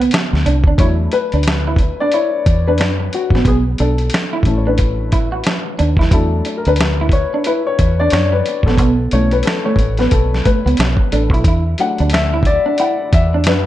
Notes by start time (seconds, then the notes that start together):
Already playing: D3 C4 F4 E5
0.01 closed hi-hat
0.11 muted clean electric guitar stroke, snare, closed hi-hat
0.33 D2, snare
0.46 C2 D4, closed hi-hat
0.64 D2 D4, kick
0.78 E2 F#3 A3 D4 E4 C#5, kick, closed hi-hat
1.12 B4, muted clean electric guitar stroke, closed hi-hat
1.32 D2 D4, closed hi-hat
1.43 closed hi-hat
1.48 snare
1.68 E4
1.76 kick, closed hi-hat
1.80 muted clean electric guitar stroke
2.00 D4 D5
2.12 E4 C#5, closed hi-hat
2.46 E2, muted clean electric guitar stroke, kick, closed hi-hat
2.67 D4 B4
2.78 F#2 D4, snare, closed hi-hat
3.13 F#4, muted clean electric guitar stroke, closed hi-hat
3.30 A1, kick
3.35 B3, snare
3.45 B1 B3 G#4, kick, closed hi-hat
3.78 B1 D4 A4, closed hi-hat
3.98 closed hi-hat
4.10 closed hi-hat
4.14 snare
4.33 E4
4.43 A1 E3 A3 C#4, kick, closed hi-hat
4.48 muted clean electric guitar stroke
4.57 C#5
4.67 D4 B4
4.78 muted clean electric guitar stroke, kick, closed hi-hat
5.12 E4, kick, closed hi-hat
5.32 F#4
5.44 muted clean electric guitar stroke, snare, closed hi-hat
5.79 D#2 D4, closed hi-hat
5.97 E4, kick
6.01 snare
6.11 E2 F#3 A3 D4 E4 A4, kick, closed hi-hat
6.45 muted clean electric guitar stroke, closed hi-hat
6.57 A#4
6.65 D2 D4 B4, closed hi-hat
6.76 closed hi-hat
6.81 snare
7.01 E4
7.09 C#5, kick, closed hi-hat
7.14 muted clean electric guitar stroke
7.34 D4
7.44 E4 B4, closed hi-hat
7.67 C#5
7.79 E2, muted clean electric guitar stroke, kick, closed hi-hat
8.00 D4 D5
8.10 F#2 C#5, snare, closed hi-hat
8.15 D4
8.32 B4
8.46 muted clean electric guitar stroke, closed hi-hat
8.63 A1 A4, kick
8.68 B3, snare
8.78 B1 B3, kick, closed hi-hat
9.11 B1 E3 A3 C#4 C#5, closed hi-hat
9.31 B4, closed hi-hat
9.43 A4, closed hi-hat
9.47 snare
9.65 A3 C#5
9.76 A1, muted clean electric guitar stroke, kick, closed hi-hat
9.97 B3 B4, snare, closed hi-hat
10.11 B1 A4, muted clean electric guitar stroke, kick, closed hi-hat
10.34 snare
10.45 A3 B4, muted fingered electric bass stroke, kick, closed hi-hat
10.66 C#2 B3, closed hi-hat
10.77 B1, muted clean electric guitar stroke, snare, closed hi-hat
10.97 kick
11.12 A1 D4 A4, closed hi-hat
11.30 B1 E4, kick
11.34 closed hi-hat
11.44 E2 E4, kick, closed hi-hat
11.78 F#3 A3 D4 F#5, muted clean electric guitar stroke, closed hi-hat
11.98 D2 D4, closed hi-hat
12.10 E5, closed hi-hat
12.14 snare
12.34 E4
12.43 D5, muted clean electric guitar stroke, kick, closed hi-hat
12.66 D4
12.78 E4 F#5, closed hi-hat
13.13 E2 E5, muted clean electric guitar stroke, kick, closed hi-hat
13.34 D4
13.44 F#2 D4 B4, snare, closed hi-hat